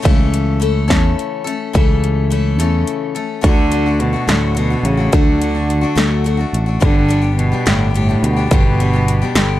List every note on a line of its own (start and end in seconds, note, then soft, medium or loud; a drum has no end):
0.02 0.90 C#2 medium
0.02 0.60 C#3 medium
0.02 0.58 E3 medium
0.02 0.60 A3 medium
0.02 0.60 C#4 medium
0.02 0.62 A4 medium
0.02 kick loud
0.02 closed hi-hat medium
0.34 closed hi-hat medium
0.60 0.88 E3 medium
0.60 0.87 A3 medium
0.60 0.87 C#4 medium
0.60 0.87 A4 medium
0.60 closed hi-hat medium
0.88 1.14 E2 medium
0.88 1.46 C#3 medium
0.88 1.46 E3 medium
0.88 1.46 A3 medium
0.88 1.45 C#4 medium
0.88 1.44 A4 medium
0.88 kick medium
0.88 snare loud
0.88 closed hi-hat medium
1.19 closed hi-hat soft
1.44 1.73 A3 soft
1.44 1.73 C#4 soft
1.44 1.74 A4 medium
1.44 closed hi-hat medium
1.73 2.59 C#2 medium
1.73 2.30 C#3 medium
1.73 2.29 E3 medium
1.73 2.30 A3 medium
1.73 2.31 C#4 medium
1.73 2.31 A4 medium
1.73 kick loud
1.73 closed hi-hat medium
2.04 closed hi-hat medium
2.30 2.59 E3 medium
2.30 2.59 A3 medium
2.30 2.58 C#4 medium
2.30 2.57 A4 medium
2.30 closed hi-hat medium
2.59 2.83 E2 medium
2.59 3.16 C#3 medium
2.59 3.16 E3 medium
2.59 3.15 A3 medium
2.59 3.15 C#4 medium
2.59 3.14 A4 medium
2.59 closed hi-hat medium
2.87 closed hi-hat medium
3.15 3.42 A3 soft
3.15 3.42 C#4 soft
3.15 3.43 A4 medium
3.15 closed hi-hat medium
3.41 4.14 D2 medium
3.41 3.71 D3 medium
3.41 3.70 F#3 medium
3.41 3.72 A3 medium
3.41 3.72 D4 medium
3.41 3.72 F#4 medium
3.41 kick medium
3.41 closed hi-hat medium
3.47 4.03 D3 medium
3.72 3.86 F#3 medium
3.72 3.87 A3 medium
3.72 3.86 D4 medium
3.72 3.85 F#4 medium
3.72 closed hi-hat medium
3.86 4.15 A3 soft
3.86 4.13 D4 soft
3.86 4.12 F#4 soft
4.00 4.30 B2 medium
4.00 closed hi-hat medium
4.13 4.28 A3 soft
4.13 4.28 D4 soft
4.13 4.28 F#4 soft
4.28 4.75 D2 medium
4.28 4.59 A2 medium
4.28 4.56 D3 medium
4.28 4.53 F#3 medium
4.28 4.55 A3 medium
4.28 4.55 D4 medium
4.28 4.56 F#4 medium
4.28 snare medium
4.28 closed hi-hat medium
4.55 4.87 B2 medium
4.55 4.70 F#3 medium
4.55 4.71 A3 medium
4.55 4.70 D4 medium
4.55 4.69 F#4 medium
4.55 closed hi-hat medium
4.70 4.99 A3 soft
4.70 4.97 D4 soft
4.70 4.96 F#4 soft
4.83 5.07 A1 medium
4.83 5.14 C#3 medium
4.83 closed hi-hat medium
4.97 5.12 A3 soft
4.97 5.13 D4 soft
4.97 5.12 F#4 soft
5.12 5.83 D2 medium
5.12 5.41 D3 medium
5.12 6.26 D3 medium
5.12 5.40 F#3 medium
5.12 5.41 A3 medium
5.12 5.42 D4 medium
5.12 5.42 F#4 medium
5.12 kick loud
5.12 closed hi-hat medium
5.42 5.56 F#3 soft
5.42 5.56 A3 soft
5.42 5.55 D4 medium
5.42 5.54 F#4 medium
5.42 closed hi-hat medium
5.55 5.83 A3 soft
5.55 5.82 D4 soft
5.55 5.80 F#4 soft
5.70 closed hi-hat medium
5.81 5.96 A3 soft
5.81 5.96 D4 medium
5.81 5.97 F#4 medium
5.95 6.44 D2 medium
5.95 6.25 D3 medium
5.95 6.23 F#3 medium
5.95 6.24 A3 medium
5.95 6.25 D4 medium
5.95 6.26 F#4 medium
5.95 snare medium
5.95 closed hi-hat medium
6.24 6.39 F#3 medium
6.24 6.39 A3 medium
6.24 6.38 D4 medium
6.24 6.36 F#4 medium
6.24 closed hi-hat medium
6.37 6.67 A3 soft
6.37 6.67 D4 soft
6.37 6.65 F#4 medium
6.53 6.77 A1 medium
6.53 closed hi-hat medium
6.66 6.81 A3 soft
6.66 6.80 D4 soft
6.66 6.81 F#4 soft
6.80 7.52 G1 medium
6.80 7.09 G2 medium
6.80 7.10 D3 medium
6.80 7.34 D3 medium
6.80 7.07 G3 medium
6.80 7.08 B3 medium
6.80 7.08 D4 medium
6.80 7.10 G4 medium
6.80 kick loud
6.80 closed hi-hat medium
7.08 7.23 G3 medium
7.08 7.22 B3 medium
7.08 7.21 D4 medium
7.08 7.20 G4 medium
7.08 closed hi-hat medium
7.22 7.53 G3 soft
7.22 7.52 B3 soft
7.22 7.52 D4 soft
7.22 7.51 G4 soft
7.37 7.68 B2 medium
7.37 closed hi-hat medium
7.52 7.64 G3 soft
7.52 7.65 B3 soft
7.52 7.65 D4 medium
7.52 7.66 G4 medium
7.66 8.14 G1 medium
7.66 7.94 G2 medium
7.66 7.95 A2 medium
7.66 7.95 D3 medium
7.66 7.93 G3 medium
7.66 7.94 B3 medium
7.66 7.95 D4 medium
7.66 7.95 G4 medium
7.66 snare medium
7.66 closed hi-hat medium
7.94 8.26 A2 medium
7.94 8.09 G3 medium
7.94 8.09 B3 medium
7.94 8.08 D4 medium
7.94 8.07 G4 medium
7.94 closed hi-hat medium
8.09 8.38 G3 soft
8.09 8.37 B3 soft
8.09 8.36 D4 soft
8.09 8.35 G4 soft
8.23 8.46 D2 medium
8.23 8.51 B2 medium
8.23 closed hi-hat medium
8.36 8.51 G3 soft
8.36 8.51 B3 soft
8.36 8.51 D4 soft
8.36 8.51 G4 medium
8.51 9.22 G1 medium
8.51 8.79 G2 medium
8.51 9.60 B2 medium
8.51 8.80 D3 medium
8.51 8.79 G3 medium
8.51 8.80 B3 medium
8.51 8.80 D4 medium
8.51 8.80 G4 medium
8.51 kick loud
8.51 closed hi-hat medium
8.80 8.94 G3 medium
8.80 8.94 B3 medium
8.80 8.94 D4 medium
8.80 8.92 G4 medium
8.80 closed hi-hat medium
8.93 9.23 G3 soft
8.93 9.22 B3 soft
8.93 9.21 D4 soft
8.93 9.20 G4 soft
9.08 closed hi-hat medium
9.22 9.35 G3 soft
9.22 9.35 B3 medium
9.22 9.36 D4 medium
9.22 9.36 G4 medium
9.35 9.60 G1 medium
9.35 9.60 G2 medium
9.35 9.60 D3 medium
9.35 9.60 G3 medium
9.35 9.60 B3 medium
9.35 9.60 D4 medium
9.35 9.60 G4 medium
9.35 snare loud
9.35 closed hi-hat medium